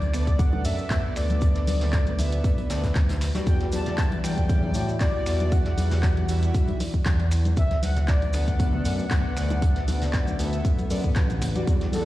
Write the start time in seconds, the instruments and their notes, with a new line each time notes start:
Already playing: analog synth pad A3 D4 B4, soft synth lead D5
0.02 closed hi-hat, high conga
0.13 analog synth bass D2, analog polysynth B3 A4 D5, finger snap, closed hi-hat, open hi-hat, maracas
0.27 kick, closed hi-hat, maracas
0.39 soft synth lead F#5, kick, closed hi-hat, muted conga, maracas
0.52 high conga, low conga
0.65 analog synth bass F#2, analog polysynth B3 A4 D5, soft synth lead E5, closed hi-hat, open hi-hat, maracas
0.78 muted conga, maracas
0.90 analog synth bass D2, analog polysynth B3 A4 D5, kick, snare, clap, closed hi-hat, high conga, maracas
1.16 analog synth bass D2, analog polysynth B3 A4 D5, soft synth lead D5, finger snap, snare, closed hi-hat, open hi-hat, maracas
1.30 closed hi-hat, muted conga, high conga, maracas
1.41 kick, closed hi-hat, maracas
1.55 snare, closed hi-hat, maracas
1.67 analog synth bass D2, snare, closed hi-hat, open hi-hat, muted conga, high conga, maracas
1.81 snare, open hi-hat, low conga, maracas
1.93 kick, snare, clap, closed hi-hat, maracas
2.06 closed hi-hat, high conga, maracas
2.18 analog synth bass D2, analog polysynth B3 A4 E5, closed hi-hat, open hi-hat, muted conga, maracas
2.32 closed hi-hat, maracas
2.44 kick, closed hi-hat, maracas
2.58 closed hi-hat, muted conga, high conga
2.70 analog synth bass D2, analog polysynth B3 A4 D5, snare, closed hi-hat, open hi-hat, maracas
2.84 analog polysynth B3 A4 B4, kick, snare, closed hi-hat, maracas
2.95 kick, snare, clap, closed hi-hat, high conga, maracas
3.09 snare, closed hi-hat, muted conga
3.21 finger snap, snare, closed hi-hat, open hi-hat, maracas
3.35 analog polysynth G3 F#4 D5, snare, closed hi-hat, high conga, maracas
3.46 analog synth bass E2, analog synth pad E3 E4 D5, soft synth lead G5, kick, closed hi-hat, maracas
3.60 snare, closed hi-hat, muted conga
3.72 analog synth bass E2, soft synth lead A5, snare, closed hi-hat, open hi-hat, high conga, maracas
3.86 snare, closed hi-hat, low conga, maracas
3.98 soft synth lead A5, kick, snare, clap, closed hi-hat, maracas
4.11 closed hi-hat, muted conga, high conga
4.17 soft synth lead A5
4.24 analog synth bass E2, analog polysynth F#3 G3 D5, soft synth lead G5, finger snap, closed hi-hat, open hi-hat, maracas
4.38 kick, closed hi-hat, maracas
4.49 kick, closed hi-hat, muted conga, maracas
4.63 high conga, low conga
4.74 analog synth bass A2, analog polysynth G3 F#4 D5, closed hi-hat, open hi-hat, maracas
4.89 maracas
5.00 analog synth bass D2, analog polysynth G3 F#4 D5, soft synth lead D5, kick, snare, clap, closed hi-hat, muted conga, high conga, maracas
5.26 analog synth bass E2, analog polysynth G3 F#4 D5, finger snap, snare, closed hi-hat, open hi-hat, maracas
5.40 closed hi-hat, muted conga, high conga, maracas
5.52 soft synth lead F#5, kick, closed hi-hat, maracas
5.65 snare, closed hi-hat
5.78 analog synth bass E2, snare, closed hi-hat, open hi-hat, high conga, maracas
5.91 snare, open hi-hat, muted conga, low conga, maracas
6.03 kick, snare, clap, closed hi-hat, maracas
6.17 closed hi-hat, high conga
6.29 analog synth bass E2, analog polysynth G3 F#4 E5, closed hi-hat, open hi-hat, muted conga, maracas
6.43 closed hi-hat, maracas
6.54 kick, closed hi-hat, maracas
6.67 closed hi-hat, high conga
6.80 open hi-hat, muted conga, maracas
6.94 kick, closed hi-hat, maracas
7.06 analog synth bass E2, kick, snare, clap, closed hi-hat, high conga, maracas
7.20 closed hi-hat, muted conga
7.31 finger snap, closed hi-hat, open hi-hat, maracas
7.45 closed hi-hat, high conga, maracas
7.57 analog synth bass D2, analog synth pad A3 D4 B4 F#5, soft synth lead E5, kick, closed hi-hat, maracas
7.71 snare, closed hi-hat, muted conga
7.83 analog synth bass D2, soft synth lead F#5, snare, closed hi-hat, open hi-hat, high conga, maracas
7.96 snare, closed hi-hat, low conga, maracas
8.08 soft synth lead D5, kick, snare, clap, closed hi-hat, muted conga, maracas
8.22 closed hi-hat, high conga
8.33 analog synth bass D2, analog polysynth B3 A4 D5, soft synth lead F#5, finger snap, closed hi-hat, open hi-hat, maracas
8.48 kick, closed hi-hat, maracas
8.59 kick, closed hi-hat, muted conga, maracas
8.73 high conga, low conga
8.85 analog synth bass F#2, analog polysynth B3 A4 D5, closed hi-hat, open hi-hat, maracas
8.98 muted conga, maracas
9.11 analog synth bass D2, analog polysynth B3 A4 D5, kick, snare, clap, closed hi-hat, high conga, maracas
9.36 analog synth bass D2, analog polysynth B3 A4 D5, finger snap, snare, closed hi-hat, open hi-hat, maracas
9.50 closed hi-hat, muted conga, high conga, maracas
9.62 kick, closed hi-hat, maracas
9.76 snare, closed hi-hat
9.88 analog synth bass D2, snare, closed hi-hat, open hi-hat, muted conga, high conga, maracas
10.02 snare, open hi-hat, low conga, maracas
10.13 kick, snare, clap, closed hi-hat, maracas
10.27 closed hi-hat, high conga, maracas
10.39 analog synth bass D2, analog polysynth B3 A4 E5, closed hi-hat, open hi-hat, muted conga, maracas
10.53 closed hi-hat, maracas
10.65 kick, closed hi-hat, maracas
10.79 closed hi-hat, muted conga, high conga, maracas
10.90 analog synth bass F#2, analog polysynth B3 A4 D5, open hi-hat, maracas
11.04 analog synth bass A1, analog polysynth B3 A4 B4, kick, closed hi-hat, maracas
11.15 kick, snare, clap, closed hi-hat, high conga, maracas
11.30 closed hi-hat, muted conga, maracas
11.42 finger snap, closed hi-hat, open hi-hat, low conga, maracas
11.55 analog polysynth G3 F#4 D5, closed hi-hat, high conga, maracas
11.67 analog synth bass E2, analog synth pad G3 E4 D5, kick, closed hi-hat, maracas
11.81 snare, closed hi-hat, muted conga
11.93 analog synth bass E2, soft synth lead A4, snare, closed hi-hat, open hi-hat, high conga, maracas